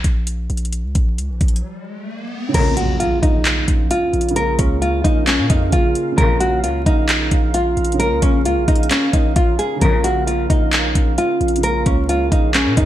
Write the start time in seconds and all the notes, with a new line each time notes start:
0.04 A#1, kick, closed hi-hat
0.27 closed hi-hat
0.50 A#1, closed hi-hat
0.57 closed hi-hat
0.65 closed hi-hat
0.73 closed hi-hat, riser
0.84 C#2
0.95 A#1, kick, closed hi-hat
1.18 C#2, closed hi-hat
1.29 A#1
1.41 A#1, kick, closed hi-hat
1.48 closed hi-hat
1.56 closed hi-hat
2.49 C#3
2.54 A#1 F2 C#3 A#3 C#4 A#4 F5, kick, closed hi-hat, crash, impact
2.60 F4
2.77 F#4, closed hi-hat
3.00 F4, closed hi-hat
3.22 A#1 D#4, kick, closed hi-hat
3.45 clap, closed hi-hat
3.68 A#1, kick, closed hi-hat
3.91 F4, closed hi-hat
4.13 A#1, closed hi-hat
4.21 closed hi-hat
4.29 C#3, closed hi-hat
4.36 A#3 A#4, closed hi-hat
4.42 F4
4.59 C#2 C#4, kick, closed hi-hat
4.82 F4, closed hi-hat
5.04 A#1 D#4, kick, closed hi-hat
5.27 C#4, clap, closed hi-hat
5.39 A#2
5.50 F2 D#4, kick, closed hi-hat
5.70 A#1 C#3 A#3 F4, kick, closed hi-hat
5.76 F4
5.95 closed hi-hat
6.12 C#3
6.18 A#1 F2 C#3 A#3 C#4 A#4, kick, closed hi-hat
6.24 F4
6.40 F#4, closed hi-hat
6.63 C#2 F4, closed hi-hat
6.86 A#1 D#4, kick, closed hi-hat
7.09 clap, closed hi-hat
7.31 A#1, kick, closed hi-hat
7.54 F4, closed hi-hat
7.77 A#1, closed hi-hat
7.85 closed hi-hat
7.92 C#3, closed hi-hat
7.99 A#3 A#4, closed hi-hat
8.06 F4
8.11 C#2
8.22 A#1 C#4, kick, closed hi-hat
8.45 C#2 F4, closed hi-hat
8.57 A#1
8.68 A#1 D#4, kick, closed hi-hat
8.75 closed hi-hat
8.83 closed hi-hat
8.91 C#4, clap, closed hi-hat
9.13 A#1 D#4, kick, closed hi-hat
9.36 A#1 F4, kick, closed hi-hat
9.59 G#4, closed hi-hat
9.76 C#3
9.81 A#1 F2 C#3 A#3 A#4, kick, closed hi-hat
9.87 F4
10.04 F#4, closed hi-hat
10.27 F4, closed hi-hat
10.50 A#1 D#4, kick, closed hi-hat
10.73 clap, closed hi-hat
10.95 A#1, kick, closed hi-hat
11.18 F4, closed hi-hat
11.41 A#1, closed hi-hat
11.48 closed hi-hat
11.56 C#3, closed hi-hat
11.63 A#3 A#4, closed hi-hat
11.69 F4
11.86 C#2 C#4, kick, closed hi-hat
12.09 F4, closed hi-hat
12.32 A#1 D#4, kick, closed hi-hat
12.54 C#4, clap, closed hi-hat
12.66 A#2
12.77 F2 D#4, kick, closed hi-hat